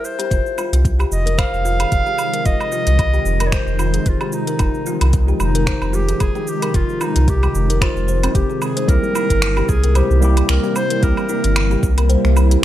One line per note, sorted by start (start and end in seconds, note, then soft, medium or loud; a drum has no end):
0.04 0.85 C5 medium
0.04 cabasa medium
0.19 0.30 G4 medium
0.19 closed hi-hat soft
0.19 cabasa soft
0.30 0.41 F1 medium
0.30 8.84 C3 medium
0.30 8.84 D#3 medium
0.30 8.84 F3 medium
0.30 8.84 G#3 medium
0.30 8.84 D#4 medium
0.30 0.45 F4 medium
0.30 kick medium
0.30 closed hi-hat soft
0.30 cabasa soft
0.46 cabasa soft
0.58 0.72 F4 medium
0.58 cabasa medium
0.58 low woodblock medium
0.73 1.05 C2 medium
0.73 0.98 F4 medium
0.73 closed hi-hat medium
0.73 cabasa soft
0.85 kick loud
0.85 closed hi-hat soft
0.85 cabasa soft
0.99 1.06 G4 medium
0.99 cabasa soft
0.99 low woodblock medium
1.12 1.45 F1 loud
1.12 1.40 D#5 medium
1.12 cabasa medium
1.26 1.33 A#4 medium
1.26 closed hi-hat soft
1.26 cabasa soft
1.38 1.64 C5 medium
1.38 2.47 F5 loud
1.38 finger snap medium
1.38 kick loud
1.38 closed hi-hat soft
1.38 cabasa soft
1.38 low woodblock medium
1.53 1.85 F1 medium
1.53 cabasa soft
1.65 1.79 F4 medium
1.65 cabasa medium
1.80 1.91 G#4 medium
1.80 closed hi-hat medium
1.80 cabasa soft
1.80 low woodblock medium
1.92 2.02 F1 medium
1.92 kick medium
1.92 closed hi-hat soft
1.92 cabasa soft
2.06 2.13 G4 medium
2.06 cabasa soft
2.18 cabasa medium
2.18 low woodblock medium
2.33 2.40 A#4 medium
2.33 closed hi-hat soft
2.33 cabasa soft
2.45 2.55 F1 medium
2.45 2.60 F4 medium
2.45 3.48 D#5 loud
2.45 kick loud
2.45 closed hi-hat soft
2.45 cabasa soft
2.60 cabasa soft
2.60 low woodblock medium
2.72 2.86 F4 medium
2.72 cabasa medium
2.87 3.19 C2 medium
2.87 3.12 F4 medium
2.87 closed hi-hat medium
2.87 cabasa soft
2.99 kick medium
2.99 closed hi-hat soft
2.99 cabasa soft
2.99 low woodblock medium
3.14 3.21 G4 medium
3.14 cabasa soft
3.25 3.59 F1 loud
3.25 cabasa medium
3.40 3.48 A#4 medium
3.40 closed hi-hat medium
3.40 cabasa soft
3.40 low woodblock medium
3.47 3.55 C#5 medium
3.52 4.10 C5 loud
3.52 finger snap medium
3.52 kick loud
3.52 closed hi-hat soft
3.52 cabasa soft
3.67 3.99 F1 medium
3.67 cabasa soft
3.79 3.93 F4 medium
3.79 cabasa medium
3.79 low woodblock medium
3.94 4.06 G#4 medium
3.94 closed hi-hat medium
3.94 cabasa soft
4.06 4.16 F1 medium
4.06 4.35 F4 medium
4.06 kick medium
4.06 closed hi-hat soft
4.06 cabasa soft
4.21 4.28 G4 medium
4.21 cabasa soft
4.21 low woodblock medium
4.32 5.13 D#4 medium
4.32 cabasa medium
4.47 4.54 A#4 medium
4.47 closed hi-hat soft
4.47 cabasa soft
4.59 4.70 F1 loud
4.59 4.74 F4 medium
4.59 kick medium
4.59 closed hi-hat soft
4.59 cabasa soft
4.59 low woodblock medium
4.74 cabasa soft
4.86 5.00 F4 loud
4.86 cabasa medium
5.01 5.33 C2 medium
5.01 5.27 F4 medium
5.01 closed hi-hat medium
5.01 cabasa soft
5.01 low woodblock medium
5.13 kick medium
5.13 closed hi-hat soft
5.13 cabasa soft
5.28 5.35 G4 loud
5.28 cabasa soft
5.40 5.73 F1 loud
5.40 5.96 D#4 medium
5.40 cabasa medium
5.40 low woodblock medium
5.55 5.62 A#4 medium
5.55 closed hi-hat medium
5.55 cabasa soft
5.66 5.92 C5 medium
5.66 finger snap medium
5.66 kick medium
5.66 closed hi-hat soft
5.66 cabasa soft
5.82 6.14 F1 medium
5.82 cabasa soft
5.82 low woodblock medium
5.93 6.08 F4 loud
5.93 6.22 G4 loud
5.93 cabasa medium
6.09 6.20 G#4 medium
6.09 closed hi-hat medium
6.09 cabasa soft
6.20 6.30 F1 medium
6.20 6.51 G#4 loud
6.20 kick medium
6.20 closed hi-hat soft
6.20 cabasa soft
6.20 low woodblock medium
6.35 6.42 G4 medium
6.35 cabasa soft
6.47 6.77 G4 loud
6.47 cabasa medium
6.62 6.69 A#4 medium
6.62 closed hi-hat medium
6.62 cabasa soft
6.62 low woodblock medium
6.74 6.84 F1 loud
6.74 6.88 F4 medium
6.74 7.04 F4 loud
6.74 kick medium
6.74 closed hi-hat soft
6.74 cabasa soft
6.89 cabasa soft
7.01 7.31 D#4 medium
7.01 7.15 F4 loud
7.01 cabasa medium
7.01 low woodblock medium
7.16 7.48 C2 medium
7.16 7.41 F4 medium
7.16 closed hi-hat medium
7.16 cabasa soft
7.28 7.81 G4 loud
7.28 kick loud
7.28 closed hi-hat soft
7.28 cabasa soft
7.43 7.49 G4 loud
7.43 cabasa soft
7.43 low woodblock medium
7.55 7.88 F1 loud
7.55 cabasa medium
7.70 7.76 A#4 medium
7.70 closed hi-hat medium
7.70 cabasa soft
7.81 8.31 F4 medium
7.81 finger snap medium
7.81 kick loud
7.81 closed hi-hat soft
7.81 cabasa soft
7.81 low woodblock medium
7.96 8.28 F1 loud
7.96 cabasa soft
8.08 8.21 C5 medium
8.08 cabasa medium
8.23 8.34 C4 medium
8.23 closed hi-hat medium
8.23 cabasa soft
8.23 low woodblock medium
8.34 8.44 F1 medium
8.34 8.64 G4 medium
8.34 8.49 G4 medium
8.34 kick medium
8.34 closed hi-hat soft
8.34 cabasa soft
8.50 8.61 G#4 medium
8.50 cabasa soft
8.62 8.90 G#4 medium
8.62 cabasa medium
8.62 low woodblock medium
8.77 8.88 C5 medium
8.77 closed hi-hat medium
8.77 cabasa soft
8.86 8.98 C2 loud
8.86 12.65 C3 medium
8.86 12.65 E3 medium
8.86 10.18 G3 medium
8.86 12.65 G3 medium
8.86 10.19 A#3 medium
8.86 12.65 A#3 medium
8.86 10.19 C4 medium
8.86 12.65 E4 medium
8.86 9.03 E4 medium
8.86 10.20 E4 medium
8.86 9.71 A#4 loud
8.86 kick loud
8.86 closed hi-hat soft
8.86 cabasa soft
8.90 10.20 G4 medium
9.03 cabasa soft
9.15 9.29 E4 loud
9.15 cabasa medium
9.15 low woodblock medium
9.30 9.62 G1 medium
9.30 9.55 E4 medium
9.30 kick medium
9.30 closed hi-hat medium
9.30 cabasa soft
9.42 finger snap loud
9.42 closed hi-hat soft
9.42 cabasa soft
9.57 9.64 G4 loud
9.57 cabasa soft
9.57 low woodblock medium
9.69 10.02 C2 loud
9.69 9.98 G#4 medium
9.69 kick loud
9.69 cabasa medium
9.84 9.90 A#4 medium
9.84 closed hi-hat medium
9.84 cabasa soft
9.95 10.49 G4 medium
9.95 10.21 C5 medium
9.95 closed hi-hat soft
9.95 cabasa soft
9.95 low woodblock medium
10.10 10.42 C2 medium
10.10 cabasa soft
10.20 10.99 G3 medium
10.20 10.99 A#3 medium
10.20 11.00 C4 medium
10.20 10.36 E4 medium
10.20 11.00 E4 medium
10.20 11.01 G4 loud
10.20 cabasa medium
10.37 10.49 G4 medium
10.37 closed hi-hat medium
10.37 cabasa soft
10.37 low woodblock medium
10.49 10.59 C2 loud
10.49 10.78 A#4 loud
10.49 finger snap loud
10.49 closed hi-hat soft
10.49 cabasa soft
10.64 10.71 G4 medium
10.64 cabasa soft
10.76 11.05 C5 loud
10.76 cabasa medium
10.76 low woodblock medium
10.90 10.97 A#4 medium
10.90 closed hi-hat medium
10.90 cabasa soft
11.01 11.12 C2 loud
11.01 12.65 G3 medium
11.01 12.65 A#3 medium
11.01 12.65 C4 medium
11.01 11.17 E4 medium
11.01 12.65 E4 medium
11.01 12.10 A#4 loud
11.01 kick loud
11.01 closed hi-hat soft
11.01 cabasa soft
11.05 12.65 G4 medium
11.17 cabasa soft
11.17 low woodblock medium
11.29 11.43 E4 loud
11.29 cabasa medium
11.44 11.76 G1 medium
11.44 11.70 E4 medium
11.44 closed hi-hat medium
11.44 cabasa soft
11.56 finger snap loud
11.56 closed hi-hat soft
11.56 cabasa soft
11.56 low woodblock medium
11.71 11.78 G4 loud
11.71 cabasa soft
11.83 12.16 C2 loud
11.83 kick loud
11.83 cabasa medium
11.98 12.04 A#4 medium
11.98 closed hi-hat medium
11.98 cabasa soft
11.98 low woodblock medium
12.09 12.35 C5 medium
12.09 closed hi-hat soft
12.09 cabasa soft
12.25 12.57 C2 medium
12.25 finger snap soft
12.25 cabasa soft
12.36 12.50 E4 loud
12.36 cabasa medium
12.36 low woodblock medium
12.51 12.63 G4 medium
12.51 closed hi-hat medium
12.51 cabasa soft